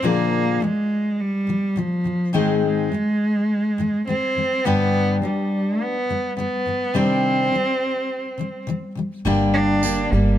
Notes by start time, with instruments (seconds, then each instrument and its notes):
0.02 steel-string acoustic guitar A#2 D3 F3 A#3 D4 G#4, cello A#3
0.60 steel-string acoustic guitar A#2 D3 F3, cello G#3
1.21 cello G3
1.47 steel-string acoustic guitar A#2 D3 F3
1.76 steel-string acoustic guitar A#2 D3 F3, cello F3
2.04 steel-string acoustic guitar A#2 D3 F3
2.33 steel-string acoustic guitar G#2 D#3 G#3 C4 D#4 G#4, cello G#3
2.65 cello G#3
2.92 steel-string acoustic guitar G#2 D#3 G#3
3.78 steel-string acoustic guitar G#2 D#3 G#3
4.07 steel-string acoustic guitar G#2 D#3 G#3, cello C4
4.35 steel-string acoustic guitar G#2 D#3 G#3
4.65 steel-string acoustic guitar G2 D3 G3 B3 D4 G4, cello B3
5.22 steel-string acoustic guitar G2 D3 G3, cello G3
5.81 cello B3
6.09 steel-string acoustic guitar G2 D3 G3
6.37 steel-string acoustic guitar G2 D3 G3, cello B3
6.66 steel-string acoustic guitar G2 D3 G3
6.94 steel-string acoustic guitar C3 D#3 G3 C4 D4 G4, cello C4
7.52 steel-string acoustic guitar C3 D#3 G3
8.38 steel-string acoustic guitar C3 D#3 G3
8.67 steel-string acoustic guitar C3 D#3 G3
8.95 steel-string acoustic guitar C3 D#3 G3
9.25 upright bass G1, steel-string acoustic guitar G2 D3 G3 A#3 D4 G4
9.54 cello D4
9.83 steel-string acoustic guitar G3 A#3 D4 G4, tambourine
10.12 upright bass G1, cello G3, steel-string acoustic guitar G3 A#3 D4 G4